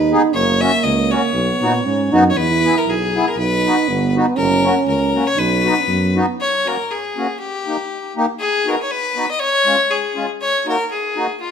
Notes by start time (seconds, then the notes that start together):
Already playing: D#2 D#4
0.11 B3 D#4 G#4
0.34 F#1 A#3 C#5
0.61 A#3 C#4 F#4 E5
0.83 C#2 D#5
1.10 A#3 C#4 F#4 C#5
1.33 B1 B3
1.62 A#2 B3 D#4 F#4
1.85 G#2 C#4
2.12 F#2 B3 D#4 F#4
2.30 C#5
2.35 E2 E4 B4
2.65 B3 E4 G#4
2.78 A#4
2.86 B1
2.90 G#4
3.15 B3 E4 G#4
3.28 A#4
3.36 B1 D#4 B4
3.66 B3 D#4 F#4
3.88 G1 B3
4.16 B3 D#4 F#4
4.36 F#1 C#4 A#4
4.64 A#3 C#4 F#4
4.86 C#2 A#4
5.14 A#3 C#4 F#4
5.27 C#5
5.36 B1 D#4 B4
5.64 B3 D#4 F#4
5.80 C#4
5.87 F#2 B3
6.15 B3 D#4 F#4
6.41 C#5
6.66 A#3 C#4 F#4 A#4
6.91 G#4
7.17 A#3 C#4 F#4
7.40 G4
7.66 A#3 D#4 G4
8.16 A#3 D#4 G4
8.39 G#4
8.66 B3 D#4 F#4 A#4
8.83 C#5
8.91 B4
9.16 B3 D#4 F#4
9.31 D#5
9.39 C#5
9.65 G#3 C#4 F4
9.90 G#4
10.15 G#3 C#4 F4
10.41 C#5
10.66 A#3 D#4 F#4 A#4
10.92 G#4
11.16 A#3 D#4 F#4
11.41 F4